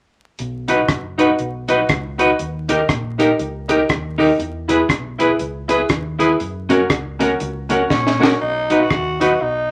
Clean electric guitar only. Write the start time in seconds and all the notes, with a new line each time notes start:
0.69 D#4 F#4 B4
1.18 D#4 F#4 B4
1.69 D#4 F#4 B4
2.19 D#4 F#4 B4
2.69 D#4 G4 A#4
3.19 D#4 G4 A#4
3.69 D#4 G4 A#4
4.18 D#4 G4 A#4
4.69 E4 G#4 B4
5.19 E4 G#4 B4
5.69 E4 G#4 B4
6.19 E4 G#4 B4
6.69 C#4 F#4 A#4
7.20 C#4 F#4 A#4
7.41 muted clean electric guitar stroke
7.71 C#4 F#4 A#4
8.21 C#4 F#4 A#4
8.70 D#4 F#4 B4
9.21 D#4 F#4 B4